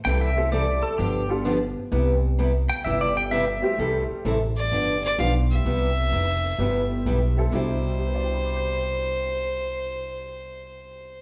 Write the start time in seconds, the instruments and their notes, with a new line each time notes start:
0.05 upright bass C2, steel-string acoustic guitar C3 E3 G3 C4 E4 A4, pedal steel guitar G5
0.21 pedal steel guitar E5
0.36 honky-tonk piano A3 C4 E4 G4 A4
0.52 steel-string acoustic guitar C3 E3 G3 C4 E4 A4, pedal steel guitar D5
0.83 pedal steel guitar A4
0.98 upright bass G1, steel-string acoustic guitar D3 F3 B3 D4 G4, pedal steel guitar G4
1.29 honky-tonk piano G3 B3 D4 F4 A4
1.45 steel-string acoustic guitar D3 F3 B3 D4 G4
1.92 upright bass C2, steel-string acoustic guitar C3 G3 B3 E4 G4
2.38 steel-string acoustic guitar C3 G3 B3 E4 G4
2.69 pedal steel guitar G5
2.84 upright bass G1, steel-string acoustic guitar C3 G3 B3 E4 G4, pedal steel guitar E5
3.01 pedal steel guitar D5
3.17 pedal steel guitar G5
3.31 steel-string acoustic guitar C3 G3 B3 E4 G4, pedal steel guitar E5
3.48 pedal steel guitar E5
3.62 honky-tonk piano G3 A3 C4 E4 G4
3.79 upright bass C2, steel-string acoustic guitar C3 E3 G3 C4 E4 A4
4.11 muted upright bass stroke
4.25 upright bass A1, steel-string acoustic guitar C3 E3 G3 C4 E4 A4
4.57 fiddle D5
4.72 upright bass G1, steel-string acoustic guitar D3 F3 B3 D4 G4
5.04 fiddle D5
5.18 upright bass B1, steel-string acoustic guitar D3 F3 B3 D4 G4, honky-tonk piano G3 B3 D4 F4 G4, fiddle F5
5.51 fiddle E5
5.65 upright bass C2, steel-string acoustic guitar C3 G3 B3 E4 G4
6.12 upright bass F1, steel-string acoustic guitar C3 G3 B3 E4 G4
6.58 upright bass G1, steel-string acoustic guitar C3 G3 B3 E4 G4, honky-tonk piano G3 B3 C4 E4 G4
7.06 upright bass B1, steel-string acoustic guitar C3 G3 B3 E4 G4
7.37 honky-tonk piano G3 B3 C4 E4 A4
7.52 upright bass C2, honky-tonk piano B2 C3 G3 D4 E4, steel-string acoustic guitar C3 G3 E4 G4, fiddle C5
7.99 honky-tonk piano G4
8.07 honky-tonk piano B4
8.15 honky-tonk piano D5
8.24 honky-tonk piano G5
8.34 honky-tonk piano B5
8.45 honky-tonk piano D6
8.56 honky-tonk piano G6